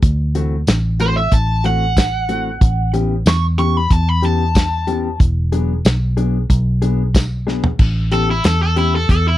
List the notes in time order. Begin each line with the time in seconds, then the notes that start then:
0.02 D2, kick, closed hi-hat
0.35 E3 A3 C4 F#4, closed hi-hat
0.67 A1, snare, closed hi-hat, tambourine
1.00 E3 A3 C4 F#4 C5, closed hi-hat
1.17 E5
1.32 A1 A5, kick, closed hi-hat
1.64 E3 A3 C4 F#4 F#5, closed hi-hat
1.97 kick, snare, closed hi-hat, tambourine
2.29 E3 A3 C4 F#4, closed hi-hat
2.61 A1, kick, closed hi-hat
2.94 E3 B3 C#4 G4, closed hi-hat
3.26 E2 C#6, snare, closed hi-hat, tambourine
3.58 E3 B3 C#4 G4 C#6, closed hi-hat
3.77 B5
3.90 E2 A5, kick, closed hi-hat
4.09 B5
4.22 E3 B3 C#4 G4 A5, closed hi-hat
4.55 kick, snare, closed hi-hat, tambourine
4.87 E3 B3 C#4 G4, closed hi-hat
5.20 E1, kick, closed hi-hat
5.52 F#3 B3 D4 G#4, closed hi-hat
5.85 B1, snare, closed hi-hat, tambourine
6.17 F#3 B3 D4 G#4, closed hi-hat
6.50 B1, kick, closed hi-hat
6.82 F#3 B3 D4 G#4, closed hi-hat
7.15 kick, snare, closed hi-hat, tambourine
7.47 F#3 B3 D4 G#4, snare
7.64 floor tom
7.79 A1, kick, crash
8.11 E3 B3 C#4 G4 A4, closed hi-hat
8.31 E4
8.44 E2 A4, snare, closed hi-hat, tambourine
8.63 A4
8.76 E3 B3 C#4 E4 G4, closed hi-hat
8.96 A4
9.09 E2 A4, kick, closed hi-hat
9.28 E4